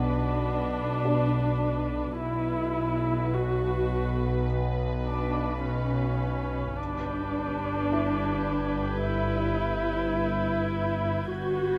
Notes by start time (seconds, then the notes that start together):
Already playing: B1 B2 D4 B4 F#5
1.05 D4 D5
2.19 B1 B2 E4 B4
3.34 F#4
5.06 D4
5.64 C#4
6.77 G1 G2 D4 B4 G6
7.92 E4 E5 G#6
9.04 E4
11.30 G1 G2 F#4 B4